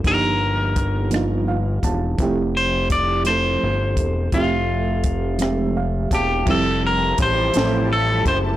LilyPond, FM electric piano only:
\new Staff \with { instrumentName = "FM electric piano" } { \time 6/8 \key f \major \tempo 4. = 56 << { r2 f''8 a''8 | r2. | r2 f''8 a''8 | r2. | } \\ { <f bes d' ees' g'>4 r8 <f bes d' ees' f'>4 r8 | <f g a c' e' g'>4 r8 <f a c' e' a'>4 r8 | <f a c' g' e''>4 r8 <f aes a c' g' e''>4 r8 | <f g c' e' g'>4 r8 <f a c' e' a'>4 r8 | } >> }